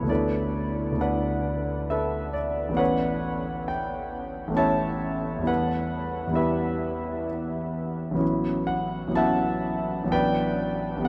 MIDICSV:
0, 0, Header, 1, 2, 480
1, 0, Start_track
1, 0, Tempo, 899550
1, 52, Time_signature, 3, 2, 24, 8
1, 3892, Tempo, 940439
1, 5825, End_track
2, 0, Start_track
2, 0, Title_t, "Grand piano"
2, 0, Program_c, 0, 0
2, 0, Control_c, 0, 64, 127
2, 0, Note_on_c, 0, 33, 40
2, 0, Note_on_c, 0, 57, 34
2, 0, Note_on_c, 0, 59, 34
2, 0, Note_on_c, 0, 61, 31
2, 0, Note_on_c, 0, 64, 48
2, 0, Note_on_c, 0, 69, 49
2, 0, Note_on_c, 0, 71, 58
2, 0, Note_on_c, 0, 73, 61
2, 13, Note_on_c, 0, 38, 38
2, 18, Note_off_c, 0, 57, 0
2, 18, Note_on_c, 0, 57, 32
2, 31, Note_off_c, 0, 59, 0
2, 31, Note_on_c, 0, 59, 32
2, 42, Note_on_c, 0, 62, 36
2, 48, Note_off_c, 0, 64, 0
2, 48, Note_on_c, 0, 64, 35
2, 50, Note_on_c, 0, 74, 67
2, 58, Note_off_c, 0, 69, 0
2, 58, Note_on_c, 0, 69, 48
2, 59, Control_c, 0, 64, 0
2, 61, Note_off_c, 0, 71, 0
2, 62, Note_off_c, 0, 73, 0
2, 62, Note_on_c, 0, 71, 48
2, 64, Note_off_c, 0, 61, 0
2, 65, Note_off_c, 0, 33, 0
2, 140, Control_c, 0, 64, 127
2, 483, Note_off_c, 0, 38, 0
2, 491, Note_on_c, 0, 38, 43
2, 495, Note_off_c, 0, 57, 0
2, 503, Note_off_c, 0, 59, 0
2, 503, Note_on_c, 0, 57, 29
2, 511, Note_on_c, 0, 59, 31
2, 515, Note_off_c, 0, 62, 0
2, 523, Note_off_c, 0, 64, 0
2, 523, Note_off_c, 0, 69, 0
2, 523, Note_on_c, 0, 62, 33
2, 524, Note_off_c, 0, 71, 0
2, 531, Note_on_c, 0, 64, 32
2, 533, Note_off_c, 0, 74, 0
2, 539, Note_on_c, 0, 78, 62
2, 541, Note_on_c, 0, 74, 48
2, 542, Note_on_c, 0, 71, 53
2, 998, Note_off_c, 0, 74, 0
2, 999, Note_off_c, 0, 71, 0
2, 1014, Note_on_c, 0, 76, 63
2, 1018, Note_off_c, 0, 78, 0
2, 1020, Note_on_c, 0, 71, 51
2, 1022, Note_on_c, 0, 69, 56
2, 1240, Note_off_c, 0, 71, 0
2, 1241, Note_off_c, 0, 69, 0
2, 1245, Note_on_c, 0, 74, 60
2, 1254, Note_off_c, 0, 76, 0
2, 1436, Note_on_c, 0, 33, 42
2, 1437, Note_off_c, 0, 57, 0
2, 1443, Note_off_c, 0, 59, 0
2, 1445, Note_on_c, 0, 57, 32
2, 1448, Note_off_c, 0, 38, 0
2, 1451, Note_on_c, 0, 59, 36
2, 1463, Note_off_c, 0, 64, 0
2, 1464, Note_off_c, 0, 62, 0
2, 1465, Note_on_c, 0, 61, 35
2, 1471, Note_on_c, 0, 64, 33
2, 1477, Note_on_c, 0, 78, 76
2, 1483, Note_on_c, 0, 73, 59
2, 1486, Note_on_c, 0, 71, 60
2, 1489, Note_off_c, 0, 74, 0
2, 1502, Control_c, 0, 64, 0
2, 1573, Control_c, 0, 64, 127
2, 1948, Note_off_c, 0, 73, 0
2, 1950, Note_off_c, 0, 71, 0
2, 1964, Note_on_c, 0, 79, 63
2, 1966, Note_off_c, 0, 78, 0
2, 2382, Note_off_c, 0, 33, 0
2, 2390, Note_on_c, 0, 33, 48
2, 2395, Note_off_c, 0, 57, 0
2, 2402, Note_off_c, 0, 59, 0
2, 2403, Note_on_c, 0, 57, 37
2, 2408, Note_off_c, 0, 61, 0
2, 2412, Note_off_c, 0, 64, 0
2, 2412, Note_on_c, 0, 59, 35
2, 2423, Note_on_c, 0, 61, 35
2, 2431, Note_on_c, 0, 64, 37
2, 2437, Note_on_c, 0, 81, 84
2, 2439, Note_off_c, 0, 79, 0
2, 2441, Note_on_c, 0, 73, 59
2, 2444, Note_on_c, 0, 76, 60
2, 2873, Note_on_c, 0, 40, 49
2, 2885, Note_off_c, 0, 33, 0
2, 2888, Note_on_c, 0, 55, 37
2, 2889, Note_off_c, 0, 59, 0
2, 2891, Note_off_c, 0, 57, 0
2, 2892, Note_off_c, 0, 64, 0
2, 2897, Note_on_c, 0, 59, 34
2, 2900, Note_on_c, 0, 64, 35
2, 2902, Note_off_c, 0, 61, 0
2, 2904, Note_off_c, 0, 73, 0
2, 2906, Note_off_c, 0, 76, 0
2, 2920, Note_on_c, 0, 78, 76
2, 2924, Note_off_c, 0, 81, 0
2, 2924, Note_on_c, 0, 71, 59
2, 2937, Control_c, 0, 64, 0
2, 3037, Control_c, 0, 64, 127
2, 3340, Note_off_c, 0, 40, 0
2, 3348, Note_on_c, 0, 40, 47
2, 3355, Note_off_c, 0, 55, 0
2, 3361, Note_off_c, 0, 59, 0
2, 3363, Note_on_c, 0, 55, 33
2, 3369, Note_off_c, 0, 64, 0
2, 3369, Note_on_c, 0, 59, 37
2, 3377, Note_on_c, 0, 64, 38
2, 3383, Note_off_c, 0, 71, 0
2, 3391, Note_on_c, 0, 76, 64
2, 3397, Note_on_c, 0, 67, 54
2, 3398, Note_on_c, 0, 71, 51
2, 3402, Note_off_c, 0, 78, 0
2, 3866, Note_off_c, 0, 67, 0
2, 3866, Note_off_c, 0, 71, 0
2, 3884, Note_off_c, 0, 76, 0
2, 4310, Note_on_c, 0, 33, 43
2, 4315, Note_off_c, 0, 40, 0
2, 4322, Note_off_c, 0, 55, 0
2, 4322, Note_off_c, 0, 59, 0
2, 4322, Note_on_c, 0, 54, 37
2, 4329, Note_off_c, 0, 64, 0
2, 4330, Note_on_c, 0, 59, 41
2, 4341, Note_on_c, 0, 61, 37
2, 4347, Note_on_c, 0, 64, 34
2, 4370, Control_c, 0, 64, 0
2, 4468, Control_c, 0, 64, 127
2, 4594, Note_on_c, 0, 78, 72
2, 4795, Note_off_c, 0, 33, 0
2, 4801, Note_off_c, 0, 54, 0
2, 4802, Note_on_c, 0, 33, 41
2, 4809, Note_on_c, 0, 54, 39
2, 4811, Note_off_c, 0, 59, 0
2, 4819, Note_off_c, 0, 61, 0
2, 4819, Note_on_c, 0, 59, 39
2, 4822, Note_off_c, 0, 64, 0
2, 4830, Note_on_c, 0, 61, 39
2, 4837, Note_on_c, 0, 64, 36
2, 4840, Note_off_c, 0, 78, 0
2, 4842, Note_on_c, 0, 81, 82
2, 4850, Note_on_c, 0, 76, 67
2, 4850, Note_on_c, 0, 78, 60
2, 5284, Note_off_c, 0, 33, 0
2, 5292, Note_off_c, 0, 54, 0
2, 5292, Note_on_c, 0, 33, 45
2, 5300, Note_on_c, 0, 54, 38
2, 5301, Note_off_c, 0, 59, 0
2, 5309, Note_on_c, 0, 59, 42
2, 5310, Note_off_c, 0, 61, 0
2, 5314, Note_off_c, 0, 64, 0
2, 5314, Note_off_c, 0, 76, 0
2, 5315, Note_off_c, 0, 78, 0
2, 5319, Note_on_c, 0, 62, 37
2, 5331, Note_off_c, 0, 81, 0
2, 5334, Note_on_c, 0, 79, 80
2, 5337, Note_on_c, 0, 71, 62
2, 5342, Control_c, 0, 64, 0
2, 5342, Note_on_c, 0, 74, 65
2, 5430, Control_c, 0, 64, 127
2, 5760, Note_off_c, 0, 33, 0
2, 5768, Note_on_c, 0, 33, 42
2, 5780, Note_on_c, 0, 55, 42
2, 5781, Note_off_c, 0, 54, 0
2, 5781, Note_off_c, 0, 59, 0
2, 5789, Note_on_c, 0, 59, 40
2, 5791, Note_off_c, 0, 62, 0
2, 5794, Note_off_c, 0, 71, 0
2, 5796, Note_off_c, 0, 74, 0
2, 5796, Note_on_c, 0, 60, 43
2, 5806, Note_on_c, 0, 62, 36
2, 5809, Note_on_c, 0, 78, 75
2, 5813, Note_off_c, 0, 79, 0
2, 5820, Control_c, 0, 64, 0
2, 5825, Note_off_c, 0, 33, 0
2, 5825, Note_off_c, 0, 55, 0
2, 5825, Note_off_c, 0, 59, 0
2, 5825, Note_off_c, 0, 60, 0
2, 5825, Note_off_c, 0, 62, 0
2, 5825, Note_off_c, 0, 78, 0
2, 5825, End_track
0, 0, End_of_file